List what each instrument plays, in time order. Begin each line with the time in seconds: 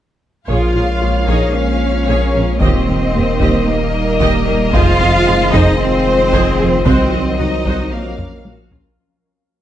0.48 double bass section A#1, sub bass A#1, trombone section F3 A#3, analog synth pad G#3 A#3 F4 C#5, synth pluck A#3, cello section F4, viola section G#4 C#5, french horn section A#4 C#5, violin section F5, taiko
0.75 double bass section A#1, synth pluck F4, viola section G#4 A#4
1.02 double bass section A#1, synth pluck F4, viola section G#4
1.28 double bass section A#1, synth pluck A#3, cello section D#4, viola section G#4 C#5, violin section D#5, taiko
1.55 cello section C#4, violin section C#5
2.08 double bass section A#1, synth pluck A#3, viola section G#4 C#5
2.35 double bass section A#1, synth pluck C#4, viola section G#4 A#4
2.61 sub bass D#1, double bass section D#2, synth pluck D#3, trombone section D#3, analog synth pad G3 D#4 D#5, cello section C4, viola section G4 D#5, violin section C5 D#5, french horn section D#5, taiko
2.88 double bass section D#2, synth pluck A#3, viola section G4 A#4
3.15 double bass section D#2, synth pluck A#3, viola section G4
3.40 double bass section D#2, synth pluck D#3, viola section G4 D#5, taiko
3.67 trombone section G3, cello section A#3, violin section A#4
4.20 double bass section D#2, synth pluck D#3, viola section G4 D#5, taiko
4.47 double bass section D#2, synth pluck G3, viola section G4 A#4
4.73 sub bass F1, double bass section F2, trombone section F3, synth pluck F3, analog synth pad G#3 C4 F4, cello section F4, french horn section G#4 C5, viola section G#4 C5, violin section F5, taiko
5.00 double bass section F2, synth pluck C4, viola section G#4
5.27 double bass section F2, synth pluck C4, viola section F4 G#4
5.52 double bass section F2, synth pluck F3, cello section D#4, viola section G#4 C5, violin section D#5, taiko
5.79 cello section C4, violin section C5
6.32 double bass section F2, synth pluck F3, viola section G#4 C5, taiko
6.59 double bass section F2, synth pluck G#3, viola section G#4
6.85 double bass section C2, sub bass C2, synth pluck C3, trombone section D#3 F#3, analog synth pad F#3 F#4, cello section C4, viola section F#4 C5, french horn section F#4, violin section C5 D#5, taiko
7.12 double bass section C2, synth pluck F#3, viola section F#4
7.39 double bass section C2, synth pluck F#3, cello section D#4, viola section D#4 F#4, violin section D#5, taiko low
7.65 double bass section C2, synth pluck C3, viola section F#4 C5, taiko
7.91 sub bass A#1, analog synth pad F3 C#4 A#4 F5, trombone section F3 A#3, cello section A#3, french horn section F4 C#5, violin section A#4 F5
8.18 taiko low-mid
8.45 double bass section A#1, synth pluck A#3, viola section F#4, taiko high
8.71 double bass section A#1, synth pluck C#4, viola section F4, taiko low